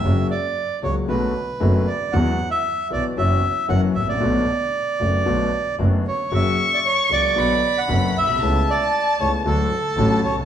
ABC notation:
X:1
M:4/4
L:1/16
Q:1/4=115
K:Bm
V:1 name="Violin"
z16 | z16 | z16 | c'8 b8 |
a8 a8 |]
V:2 name="Bandoneon"
e2 d4 c2 B6 d2 | f3 e3 d2 e4 f2 e d- | d12 z2 c2 | e3 d c2 d4- d f3 e2- |
e2 d4 c2 A6 c2 |]
V:3 name="Grand piano" clef=bass
[F,,C,F,^A,F]2 z4 [C,,C,F,A,F]2 [B,,,B,,D,=A,B,F]2 z2 [F,,,F,,D,A,B,F]2 z2 | [E,,E,F,B,F]2 z4 [B,,,B,,E,F,B,F]2 [F,,E,F,B,CF]2 z2 [F,,E,F,^A,CF]2 z/2 ^G,,,/2 =A,,,/2 ^A,,,/2 | [B,,,B,,D,A,B,F]2 z4 [F,,,F,,D,A,B,F]2 [B,,,B,,D,A,B,F]2 z2 [F,,,F,,D,A,B,F]2 z2 | [F,,C,F,^A,F]2 z4 [C,,C,F,A,F]2 [B,,,B,,D,F,B,F]2 z2 [F,,,F,,D,F,B,F]2 z/2 ^A,,,/2 B,,,/2 =C,,/2 |
[C,,C,A,B,E]2 z4 [C,,C,A,B,E]2 [D,,D,F,A,F]2 z2 [A,,,A,,D,F,A,F]2 z/2 B,,,/2 =C,,/2 z/2 |]
V:4 name="Double bass" clef=bass
F,,,2 z4 C,,2 B,,,2 z2 F,,,2 z2 | E,,2 z4 B,,,2 F,,,2 z2 F,,,2 A,,,2 | B,,,2 z4 F,,,2 B,,,2 z2 F,,,2 z2 | F,,,2 z4 C,,2 B,,,2 z2 F,,,2 B,,,2 |
C,,2 z4 C,,2 D,,2 z2 A,,,2 =C,,2 |]